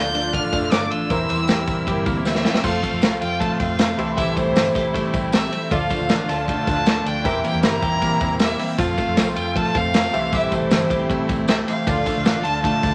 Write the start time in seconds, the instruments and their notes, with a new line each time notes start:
Already playing: fingered electric bass D2, string section D3 F3 A3 F4, clean electric guitar F3 D4, steel-string acoustic guitar A3 D4 F4 A4, synth keys F4 A4 D5, violin G6
0.14 steel-string acoustic guitar D4 F4 A4, snare, ride, tambourine
0.33 fingered electric bass A1, steel-string acoustic guitar D3 A3 D4 F4 A4, violin F6, kick, ride, tambourine
0.51 fingered electric bass F1, clean electric guitar A3, steel-string acoustic guitar D4 F4 A4, synth keys F4 A4 D5, kick, ride, tambourine
0.71 fingered electric bass G1, steel-string acoustic guitar A3 D4 F4, violin D6, snare, ride, tambourine
0.90 fingered electric bass A1, steel-string acoustic guitar D4 F4 A4, violin E6, ride
1.09 fingered electric bass E2, string section C3 G3 A#3 E4, steel-string acoustic guitar E3 G3 C4 E4 A#4, synth keys E4 A#4 C5, kick, ride, tambourine
1.28 fingered electric bass E2, steel-string acoustic guitar C4 E4 A#4, ride, tambourine
1.48 steel-string acoustic guitar G3 C4 E4 A#4, clean electric guitar G4, snare, ride, tambourine
1.67 steel-string acoustic guitar C4 E4 A#4, kick, ride, tambourine
1.87 fingered electric bass G1, steel-string acoustic guitar E3 G3 C4 E4 A#4, clean electric guitar G4, kick, ride, tambourine
2.05 fingered electric bass D2, clean electric guitar A#3, steel-string acoustic guitar C4 E4 A#4, kick, ride, tambourine
2.25 steel-string acoustic guitar G3 C4 E4 A#4, violin E5, snare, tambourine
2.35 snare
2.44 fingered electric bass E2, steel-string acoustic guitar C4 E4 A#4, clean electric guitar F4, snare, tambourine
2.54 clean electric guitar G4, snare
2.63 fingered electric bass F2, string section C3 F3 A3 F4, steel-string acoustic guitar F3 A3 C4 F4 A4, synth keys F4 A4 C5 F5, violin F5, kick, crash, tambourine
2.82 clean electric guitar A3, steel-string acoustic guitar C4 F4 A4, kick, ride, tambourine
2.92 fingered electric bass F2
3.01 steel-string acoustic guitar F3 A3 C4 F4 A4, snare, ride, tambourine
3.20 fingered electric bass F2, steel-string acoustic guitar C4 F4 A4, violin G5, ride, tambourine
3.39 fingered electric bass F3, steel-string acoustic guitar A3 C4 F4 A4, violin A5, kick, ride, tambourine
3.59 fingered electric bass F2, steel-string acoustic guitar C4 F4 A4, violin F5, kick, ride, tambourine
3.79 steel-string acoustic guitar F3 A3 C4 F4 A4, snare, ride, tambourine
3.97 fingered electric bass C2, clean electric guitar E3, string section G3 E4, steel-string acoustic guitar G3 C4 E4 A4, synth keys G4 A4 C5 E5, ride, tambourine
4.17 fingered electric bass C2, steel-string acoustic guitar C3 E3 G3 C4 E4 A4, clean electric guitar G4, violin E5, kick, ride, tambourine
4.36 steel-string acoustic guitar G3 C4 E4 A4, clean electric guitar A3, violin C5, kick, ride, tambourine
4.46 fingered electric bass C2
4.56 fingered electric bass G1, steel-string acoustic guitar C3 E3 G3 C4 E4 A4, snare, ride, tambourine
4.75 fingered electric bass C2, steel-string acoustic guitar G3 C4 E4 A4, clean electric guitar G4, kick, snare, ride, tambourine
4.94 fingered electric bass C3, steel-string acoustic guitar G3 C4 E4 A4, clean electric guitar A3, kick, ride, tambourine
5.12 fingered electric bass C2, steel-string acoustic guitar G3 C4 E4 A4, kick, ride, tambourine
5.32 steel-string acoustic guitar C3 E3 G3 C4 E4 A4, clean electric guitar A3, violin E5, snare, ride, tambourine
5.51 steel-string acoustic guitar G3 C4 E4 A4, ride, tambourine
5.71 fingered electric bass D2, steel-string acoustic guitar D3 A3 D4 F4 A4, string section D3 F3 F4, clean electric guitar F3, synth keys F4 A4 D5 F5, violin F5, kick, ride, tambourine
5.90 clean electric guitar A3, steel-string acoustic guitar D4 F4 A4, kick, ride, tambourine
6.00 fingered electric bass D2
6.09 fingered electric bass A1, steel-string acoustic guitar D3 A3 D4 F4 A4, snare, ride, tambourine
6.29 fingered electric bass D2, steel-string acoustic guitar D4 F4 A4, violin A5, snare, ride, tambourine
6.47 fingered electric bass D3, steel-string acoustic guitar A3 D4 F4 A4, violin A5, kick, ride, tambourine
6.67 fingered electric bass D2, steel-string acoustic guitar D4 F4 A4, kick, ride, tambourine
6.86 steel-string acoustic guitar D3 A3 D4 F4 A4, snare, ride, tambourine
7.05 fingered electric bass D2, steel-string acoustic guitar D4 F4 A4, violin G5, ride
7.23 fingered electric bass E2, string section C3 G3 A#3 E4, steel-string acoustic guitar E3 G3 C4 E4 A#4, synth keys G4 A#4 C5 E5, clean electric guitar G4, kick, ride, tambourine
7.44 clean electric guitar A#3, steel-string acoustic guitar C4 E4, violin G5, ride, tambourine
7.54 fingered electric bass E2
7.63 fingered electric bass G1, steel-string acoustic guitar E3 G3 C4 E4 A#4, violin A#5, snare, ride, tambourine
7.82 fingered electric bass E2, steel-string acoustic guitar C4 E4 A#4, clean electric guitar G4, kick, ride, tambourine
8.01 fingered electric bass E3, steel-string acoustic guitar G3 C4 E4 A#4, clean electric guitar A#3, kick, ride, tambourine
8.20 fingered electric bass E2, steel-string acoustic guitar C4 E4, kick, ride, tambourine
8.39 steel-string acoustic guitar E3 G3 C4 E4 A#4, clean electric guitar A#3, violin E5, snare, ride, tambourine
8.59 steel-string acoustic guitar C4 E4 A#4, open hi-hat, ride, tambourine
8.78 fingered electric bass F2, string section C3 F3 A3 F4, steel-string acoustic guitar F3 A3 C4 F4 A4, synth keys F4 A4 C5 F5, violin F5, kick, hi-hat pedal, ride, tambourine
8.98 clean electric guitar A3, steel-string acoustic guitar C4 F4 A4, kick, ride, tambourine
9.08 fingered electric bass F2
9.17 fingered electric bass C2, steel-string acoustic guitar F3 A3 C4 F4 A4, snare, ride, tambourine
9.36 fingered electric bass F2, steel-string acoustic guitar C4 F4 A4, violin G5, ride, tambourine
9.55 fingered electric bass F3, steel-string acoustic guitar A3 C4 F4 A4, violin A5, kick, ride
9.74 fingered electric bass F2, steel-string acoustic guitar C4 F4 A4, violin F5, kick, ride, tambourine
9.94 steel-string acoustic guitar F3 A3 C4 F4 A4, snare, ride, tambourine
10.13 fingered electric bass C2, clean electric guitar E3, string section G3 A3 E4, steel-string acoustic guitar G3 C4 E4 A4, synth keys G4 A4 C5 E5, ride, tambourine
10.32 fingered electric bass C2, steel-string acoustic guitar C3 E3 G3 C4 E4 A4, clean electric guitar G4, violin E5, kick, ride, tambourine
10.52 steel-string acoustic guitar G3 C4 E4 A4, clean electric guitar A3, violin C5, kick, ride, tambourine
10.61 fingered electric bass C2
10.70 fingered electric bass G1, steel-string acoustic guitar C3 E3 G3 C4 E4 A4, snare, ride, tambourine
10.90 fingered electric bass C2, steel-string acoustic guitar C4 E4 A4, clean electric guitar G4, kick, ride, tambourine
11.09 fingered electric bass C3, steel-string acoustic guitar G3 C4 E4 A4, clean electric guitar A3, kick, ride
11.28 fingered electric bass C2, steel-string acoustic guitar G3 C4 E4 A4, kick, ride, tambourine
11.48 steel-string acoustic guitar C3 E3 G3 C4 E4 A4, clean electric guitar A3, synth keys G4 A4 C5 G5, violin E5, snare, ride, tambourine
11.67 steel-string acoustic guitar G3 C4 E4 A4, violin F5, ride, tambourine
11.86 fingered electric bass D2, steel-string acoustic guitar D3 A3 D4 F4 A4, string section D3 F3 F4, clean electric guitar F3, synth keys F4 A4 D5 F5, kick, ride, tambourine
12.06 clean electric guitar A3, steel-string acoustic guitar D4 F4 A4, kick, ride, tambourine
12.16 fingered electric bass D2
12.24 fingered electric bass A1, steel-string acoustic guitar D3 A3 D4 F4 A4, snare, ride, tambourine
12.43 fingered electric bass D2, steel-string acoustic guitar D4 A4, clean electric guitar F4, violin A5, ride, tambourine
12.62 fingered electric bass D3, steel-string acoustic guitar A3 D4 F4 A4, violin A5, kick, ride, tambourine
12.82 fingered electric bass D2, steel-string acoustic guitar D4 F4 A4, kick, ride, tambourine